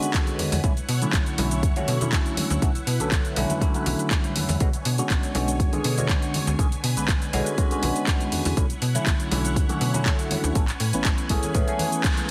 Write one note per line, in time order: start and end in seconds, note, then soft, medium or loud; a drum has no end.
0.00 0.60 D3 medium
0.00 0.61 D3 medium
0.00 0.61 G#3 medium
0.00 0.61 B3 medium
0.00 0.62 C#4 medium
0.00 0.62 F#4 medium
0.00 0.62 B4 medium
0.00 0.60 G#5 medium
0.00 closed hi-hat soft
0.00 cabasa medium
0.00 shaker soft
0.14 kick loud
0.14 clap loud
0.14 closed hi-hat medium
0.14 cabasa medium
0.27 closed hi-hat soft
0.27 high conga medium
0.27 cabasa soft
0.39 0.50 E2 soft
0.39 open hi-hat loud
0.39 low conga medium
0.39 shaker medium
0.52 0.60 E2 medium
0.52 open hi-hat medium
0.52 high conga medium
0.52 cabasa medium
0.52 shaker medium
0.64 0.81 B1 loud
0.64 0.71 D3 medium
0.64 0.71 F#3 medium
0.64 0.71 A3 medium
0.64 0.71 C#4 medium
0.64 4.57 E4 medium
0.64 0.72 E4 loud
0.64 2.60 C#5 medium
0.64 4.57 F#5 medium
0.64 kick loud
0.64 closed hi-hat medium
0.64 cabasa medium
0.64 shaker soft
0.77 closed hi-hat soft
0.77 cabasa soft
0.89 1.05 B2 medium
0.89 open hi-hat loud
0.89 shaker loud
1.02 1.36 D3 medium
1.02 1.36 F#3 medium
1.02 1.36 A3 medium
1.02 1.36 C#4 medium
1.02 1.36 E4 medium
1.02 closed hi-hat soft
1.02 cabasa medium
1.02 shaker soft
1.13 1.22 B1 medium
1.13 kick loud
1.13 clap loud
1.13 closed hi-hat medium
1.13 cabasa medium
1.26 closed hi-hat soft
1.26 cabasa soft
1.38 1.64 B1 loud
1.38 1.73 D3 medium
1.38 1.73 F#3 medium
1.38 1.73 A3 medium
1.38 1.73 C#4 medium
1.38 1.73 E4 medium
1.38 open hi-hat loud
1.38 high conga medium
1.38 shaker medium
1.51 closed hi-hat soft
1.51 cabasa medium
1.51 shaker soft
1.63 1.72 F#2 medium
1.63 kick loud
1.63 closed hi-hat medium
1.63 cabasa medium
1.76 1.98 D3 medium
1.76 1.98 F#3 medium
1.76 1.98 A3 medium
1.76 1.98 C#4 medium
1.76 1.98 F#4 medium
1.76 closed hi-hat soft
1.76 high conga medium
1.76 low conga medium
1.76 cabasa soft
1.87 2.19 B2 medium
1.87 open hi-hat loud
1.87 shaker medium
2.01 2.59 D3 medium
2.01 2.60 F#3 medium
2.01 2.60 A3 medium
2.01 2.60 C#4 medium
2.01 2.60 E4 medium
2.01 closed hi-hat soft
2.01 low conga medium
2.01 cabasa medium
2.01 shaker medium
2.13 kick loud
2.13 clap loud
2.13 closed hi-hat medium
2.13 cabasa medium
2.26 closed hi-hat soft
2.26 cabasa soft
2.37 open hi-hat loud
2.37 high conga medium
2.37 low conga medium
2.37 shaker medium
2.50 2.58 D2 medium
2.50 closed hi-hat soft
2.50 cabasa medium
2.50 shaker soft
2.62 2.79 B1 loud
2.62 2.69 D3 medium
2.62 2.70 F#3 medium
2.62 2.70 A3 medium
2.62 2.70 C#4 medium
2.62 2.70 F#4 loud
2.62 4.59 B4 medium
2.62 kick loud
2.62 closed hi-hat medium
2.62 cabasa medium
2.75 closed hi-hat soft
2.75 cabasa soft
2.87 3.00 B2 medium
2.87 open hi-hat loud
2.87 shaker medium
3.00 3.10 B1 soft
3.00 3.34 D3 medium
3.00 3.34 F#3 medium
3.00 3.34 A3 medium
3.00 3.34 C#4 medium
3.00 3.34 A4 medium
3.00 closed hi-hat soft
3.00 cabasa medium
3.00 shaker soft
3.12 3.20 B1 medium
3.12 kick loud
3.12 clap loud
3.12 closed hi-hat medium
3.12 cabasa medium
3.25 closed hi-hat soft
3.25 cabasa soft
3.36 3.45 B1 loud
3.36 3.59 D3 medium
3.36 3.59 F#3 medium
3.36 3.59 A3 medium
3.36 3.59 C#4 medium
3.36 3.59 E4 loud
3.36 open hi-hat loud
3.36 high conga medium
3.36 shaker medium
3.49 closed hi-hat soft
3.49 low conga medium
3.49 cabasa medium
3.49 shaker soft
3.61 3.73 D3 medium
3.61 3.73 F#3 medium
3.61 3.73 A3 medium
3.61 3.73 C#4 medium
3.61 3.73 E4 loud
3.61 kick loud
3.61 closed hi-hat medium
3.61 high conga loud
3.61 cabasa medium
3.61 shaker soft
3.74 4.58 D3 medium
3.74 4.58 F#3 medium
3.74 4.58 A3 medium
3.74 4.58 C#4 medium
3.74 4.59 E4 medium
3.74 closed hi-hat soft
3.74 cabasa soft
3.86 3.95 B1 medium
3.86 open hi-hat loud
3.86 low conga medium
3.86 shaker medium
3.99 closed hi-hat soft
3.99 cabasa medium
3.99 shaker soft
4.11 kick loud
4.11 clap loud
4.11 closed hi-hat medium
4.11 cabasa medium
4.24 closed hi-hat soft
4.24 high conga medium
4.24 cabasa soft
4.36 4.46 E2 soft
4.36 open hi-hat loud
4.36 low conga medium
4.36 shaker medium
4.49 4.57 E2 medium
4.49 open hi-hat medium
4.49 high conga medium
4.49 cabasa medium
4.49 shaker soft
4.60 4.77 B1 loud
4.60 4.68 D3 medium
4.60 8.54 D3 medium
4.60 4.68 G#3 medium
4.60 4.68 B3 medium
4.60 4.68 C#4 medium
4.60 4.68 F#4 loud
4.60 6.57 C#5 medium
4.60 8.54 G#5 medium
4.60 kick loud
4.60 closed hi-hat medium
4.60 cabasa medium
4.73 closed hi-hat soft
4.73 cabasa soft
4.85 5.02 B2 medium
4.85 open hi-hat loud
4.85 shaker medium
4.98 5.32 D3 medium
4.98 5.32 G#3 medium
4.98 5.32 B3 medium
4.98 5.33 C#4 medium
4.98 5.33 F#4 medium
4.98 closed hi-hat soft
4.98 cabasa medium
4.98 shaker medium
5.10 5.19 B1 medium
5.10 kick loud
5.10 clap loud
5.10 closed hi-hat medium
5.10 cabasa medium
5.23 closed hi-hat soft
5.23 cabasa soft
5.35 5.61 B1 loud
5.35 5.70 D3 medium
5.35 5.70 G#3 medium
5.35 5.70 B3 medium
5.35 5.70 C#4 medium
5.35 5.70 F#4 medium
5.35 open hi-hat loud
5.35 high conga medium
5.35 shaker medium
5.48 closed hi-hat soft
5.48 cabasa medium
5.48 shaker soft
5.60 5.68 F#2 medium
5.60 kick loud
5.60 closed hi-hat medium
5.60 cabasa medium
5.72 5.94 D3 medium
5.72 5.94 G#3 medium
5.72 5.95 B3 medium
5.72 5.95 C#4 medium
5.72 5.95 G#4 medium
5.72 closed hi-hat soft
5.72 high conga medium
5.72 low conga medium
5.72 cabasa soft
5.84 6.15 B2 medium
5.84 open hi-hat loud
5.84 shaker medium
5.97 6.56 D3 medium
5.97 6.56 G#3 medium
5.97 6.56 B3 medium
5.97 6.57 C#4 medium
5.97 6.57 F#4 medium
5.97 closed hi-hat soft
5.97 low conga medium
5.97 cabasa medium
5.97 shaker soft
6.09 kick loud
6.09 clap loud
6.09 closed hi-hat medium
6.09 cabasa medium
6.22 closed hi-hat soft
6.22 cabasa soft
6.34 open hi-hat loud
6.34 high conga medium
6.34 low conga medium
6.34 shaker medium
6.47 6.55 D2 medium
6.47 closed hi-hat soft
6.47 cabasa medium
6.47 shaker medium
6.59 6.76 B1 loud
6.59 6.66 D3 medium
6.59 6.66 G#3 medium
6.59 6.66 B3 medium
6.59 6.66 C#4 medium
6.59 6.67 G#4 loud
6.59 8.55 B4 medium
6.59 kick loud
6.59 closed hi-hat medium
6.59 cabasa medium
6.72 closed hi-hat soft
6.72 cabasa soft
6.83 6.96 B2 medium
6.83 open hi-hat loud
6.83 shaker medium
6.97 7.06 B1 soft
6.97 7.30 D3 medium
6.97 7.31 G#3 medium
6.97 7.31 B3 medium
6.97 7.31 C#4 medium
6.97 7.31 B4 medium
6.97 closed hi-hat soft
6.97 cabasa medium
6.97 shaker medium
7.08 7.17 B1 medium
7.08 kick loud
7.08 clap loud
7.08 closed hi-hat medium
7.08 cabasa medium
7.22 closed hi-hat soft
7.22 cabasa soft
7.33 7.42 B1 loud
7.33 7.55 D3 medium
7.33 7.55 G#3 medium
7.33 7.55 B3 medium
7.33 7.56 C#4 medium
7.33 7.56 F#4 loud
7.33 open hi-hat loud
7.33 high conga medium
7.33 shaker medium
7.46 closed hi-hat soft
7.46 cabasa medium
7.46 shaker medium
7.58 7.69 D3 medium
7.58 7.69 G#3 medium
7.58 7.69 B3 medium
7.58 7.69 C#4 medium
7.58 7.70 F#4 loud
7.58 kick loud
7.58 closed hi-hat medium
7.58 high conga medium
7.58 cabasa medium
7.58 shaker soft
7.71 8.54 D3 medium
7.71 8.54 G#3 medium
7.71 8.55 B3 medium
7.71 8.55 C#4 medium
7.71 8.55 F#4 medium
7.71 closed hi-hat soft
7.71 cabasa soft
7.83 7.92 B1 loud
7.83 open hi-hat loud
7.83 low conga medium
7.83 shaker medium
7.95 closed hi-hat soft
7.95 cabasa medium
7.95 shaker soft
8.07 kick loud
8.07 clap loud
8.07 closed hi-hat medium
8.07 cabasa medium
8.20 closed hi-hat soft
8.20 high conga medium
8.20 cabasa soft
8.32 8.43 E2 soft
8.32 open hi-hat loud
8.32 low conga medium
8.32 shaker medium
8.45 8.53 E2 medium
8.45 open hi-hat medium
8.45 high conga medium
8.45 cabasa medium
8.45 shaker medium
8.57 8.74 B1 loud
8.57 8.64 D3 medium
8.57 8.64 F#3 medium
8.57 8.65 A3 medium
8.57 8.65 C#4 medium
8.57 10.54 E4 medium
8.57 8.65 E4 loud
8.57 10.54 C#5 medium
8.57 10.54 F#5 medium
8.57 kick loud
8.57 closed hi-hat medium
8.57 cabasa medium
8.57 shaker soft
8.70 closed hi-hat soft
8.70 cabasa soft
8.82 8.99 B2 medium
8.82 open hi-hat loud
8.82 shaker medium
8.95 9.29 D3 medium
8.95 9.29 F#3 medium
8.95 9.29 A3 medium
8.95 9.29 C#4 medium
8.95 9.29 E4 medium
8.95 closed hi-hat soft
8.95 cabasa medium
8.95 shaker medium
9.06 9.15 B1 medium
9.06 kick loud
9.06 clap loud
9.06 closed hi-hat medium
9.06 cabasa medium
9.20 closed hi-hat soft
9.20 cabasa soft
9.31 9.58 B1 loud
9.31 9.66 D3 medium
9.31 9.66 F#3 medium
9.31 9.66 A3 medium
9.31 9.67 C#4 medium
9.31 9.67 E4 medium
9.31 open hi-hat loud
9.31 high conga medium
9.31 shaker medium
9.45 closed hi-hat soft
9.45 cabasa medium
9.45 shaker medium
9.56 9.65 F#2 medium
9.56 kick loud
9.56 closed hi-hat medium
9.56 cabasa medium
9.69 9.91 D3 medium
9.69 9.91 F#3 medium
9.69 9.91 A3 medium
9.69 9.91 C#4 medium
9.69 9.92 F#4 loud
9.69 closed hi-hat soft
9.69 high conga medium
9.69 low conga medium
9.69 cabasa soft
9.80 10.12 B2 medium
9.80 open hi-hat loud
9.80 shaker loud
9.94 10.53 D3 medium
9.94 10.53 F#3 medium
9.94 10.53 A3 medium
9.94 10.53 C#4 medium
9.94 10.53 E4 medium
9.94 closed hi-hat soft
9.94 low conga medium
9.94 cabasa medium
9.94 shaker medium
10.06 kick loud
10.06 clap loud
10.06 closed hi-hat medium
10.06 cabasa medium
10.19 closed hi-hat soft
10.19 cabasa soft
10.31 open hi-hat loud
10.31 high conga medium
10.31 low conga medium
10.31 shaker medium
10.44 10.52 D2 medium
10.44 closed hi-hat soft
10.44 cabasa medium
10.44 shaker soft
10.55 10.72 A1 loud
10.55 10.63 E3 medium
10.55 10.63 A3 medium
10.55 10.63 B3 medium
10.55 12.31 C#4 medium
10.55 10.63 C#4 medium
10.55 10.63 A4 loud
10.55 12.31 B4 medium
10.55 12.31 G#5 medium
10.55 kick loud
10.55 closed hi-hat medium
10.55 cabasa medium
10.68 clap soft
10.68 closed hi-hat soft
10.68 cabasa soft
10.80 10.93 A2 medium
10.80 open hi-hat loud
10.80 shaker loud
10.93 11.03 A1 soft
10.93 11.27 E3 medium
10.93 11.27 A3 medium
10.93 11.28 B3 medium
10.93 11.28 C#4 medium
10.93 11.28 B4 medium
10.93 closed hi-hat soft
10.93 cabasa medium
10.93 shaker medium
11.05 11.14 A1 medium
11.05 kick loud
11.05 clap loud
11.05 closed hi-hat medium
11.05 cabasa medium
11.18 closed hi-hat soft
11.18 cabasa soft
11.29 11.39 A1 loud
11.29 11.52 E3 medium
11.29 11.52 A3 medium
11.29 11.52 B3 medium
11.29 11.52 C#4 medium
11.29 11.52 G#4 loud
11.29 kick medium
11.29 open hi-hat loud
11.29 high conga medium
11.29 shaker loud
11.43 closed hi-hat soft
11.43 low conga medium
11.43 cabasa medium
11.43 shaker medium
11.54 11.63 A2 loud
11.54 11.66 E3 medium
11.54 11.66 A3 medium
11.54 11.66 B3 medium
11.54 11.66 C#4 medium
11.54 11.66 G#4 loud
11.54 kick loud
11.54 closed hi-hat medium
11.54 high conga medium
11.54 cabasa medium
11.54 shaker soft
11.67 12.31 E3 medium
11.67 12.31 A3 medium
11.67 12.31 B3 medium
11.67 12.31 C#4 medium
11.67 12.31 G#4 medium
11.67 closed hi-hat soft
11.67 cabasa soft
11.79 open hi-hat loud
11.79 low conga medium
11.79 shaker medium
11.92 closed hi-hat soft
11.92 cabasa medium
11.92 shaker medium
12.04 kick loud
12.04 clap loud
12.04 closed hi-hat medium
12.04 cabasa medium
12.17 closed hi-hat soft
12.17 high conga medium
12.17 cabasa soft